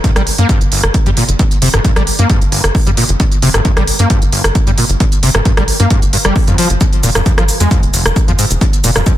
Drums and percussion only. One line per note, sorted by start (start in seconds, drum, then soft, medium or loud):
0.04 kick loud
0.04 closed hi-hat loud
0.16 cross-stick medium
0.16 closed hi-hat medium
0.27 open hi-hat loud
0.38 closed hi-hat medium
0.49 kick loud
0.49 closed hi-hat loud
0.61 closed hi-hat medium
0.72 open hi-hat loud
0.84 cross-stick medium
0.84 closed hi-hat medium
0.94 kick loud
0.94 closed hi-hat loud
1.06 closed hi-hat medium
1.17 open hi-hat loud
1.29 closed hi-hat medium
1.39 kick loud
1.39 closed hi-hat loud
1.51 closed hi-hat medium
1.62 open hi-hat loud
1.74 cross-stick medium
1.74 closed hi-hat medium
1.85 kick loud
1.85 closed hi-hat loud
1.96 cross-stick medium
1.96 closed hi-hat medium
2.07 open hi-hat loud
2.19 closed hi-hat medium
2.30 kick loud
2.30 closed hi-hat loud
2.41 closed hi-hat medium
2.52 open hi-hat loud
2.64 cross-stick medium
2.64 closed hi-hat medium
2.75 kick loud
2.75 open hi-hat medium
2.87 closed hi-hat medium
2.97 open hi-hat loud
3.09 closed hi-hat medium
3.20 kick loud
3.20 closed hi-hat medium
3.32 closed hi-hat medium
3.42 open hi-hat loud
3.54 cross-stick medium
3.54 closed hi-hat medium
3.65 kick loud
3.65 closed hi-hat medium
3.77 cross-stick medium
3.77 closed hi-hat medium
3.87 open hi-hat loud
3.99 closed hi-hat medium
4.10 kick loud
4.10 closed hi-hat loud
4.22 closed hi-hat soft
4.32 open hi-hat loud
4.44 cross-stick medium
4.44 closed hi-hat medium
4.55 kick loud
4.55 closed hi-hat loud
4.67 closed hi-hat medium
4.78 open hi-hat loud
4.89 closed hi-hat medium
5.00 kick loud
5.00 closed hi-hat medium
5.12 closed hi-hat medium
5.23 open hi-hat loud
5.35 cross-stick medium
5.35 closed hi-hat medium
5.45 kick loud
5.45 closed hi-hat medium
5.57 cross-stick medium
5.57 closed hi-hat soft
5.68 open hi-hat loud
5.80 closed hi-hat medium
5.90 kick loud
5.90 closed hi-hat loud
6.02 closed hi-hat soft
6.13 open hi-hat loud
6.25 cross-stick loud
6.25 closed hi-hat medium
6.36 kick loud
6.36 open hi-hat medium
6.47 closed hi-hat soft
6.58 open hi-hat loud
6.70 closed hi-hat medium
6.81 kick loud
6.81 closed hi-hat medium
6.81 shaker soft
6.93 closed hi-hat soft
7.03 open hi-hat loud
7.03 shaker medium
7.15 cross-stick medium
7.15 closed hi-hat soft
7.15 shaker soft
7.26 kick loud
7.26 closed hi-hat medium
7.26 shaker soft
7.38 cross-stick loud
7.38 closed hi-hat soft
7.49 open hi-hat loud
7.49 shaker medium
7.60 closed hi-hat medium
7.60 shaker soft
7.71 kick loud
7.71 closed hi-hat medium
7.71 shaker soft
7.83 closed hi-hat soft
7.94 open hi-hat loud
7.94 shaker medium
8.06 cross-stick loud
8.06 closed hi-hat medium
8.06 shaker soft
8.16 kick loud
8.16 closed hi-hat medium
8.16 shaker soft
8.28 closed hi-hat medium
8.39 open hi-hat loud
8.39 shaker medium
8.51 closed hi-hat soft
8.51 shaker soft
8.61 kick loud
8.61 closed hi-hat medium
8.61 shaker soft
8.73 closed hi-hat soft
8.84 open hi-hat loud
8.84 shaker medium
8.96 cross-stick medium
8.96 closed hi-hat soft
8.96 shaker soft
9.06 kick loud
9.06 closed hi-hat medium
9.06 shaker soft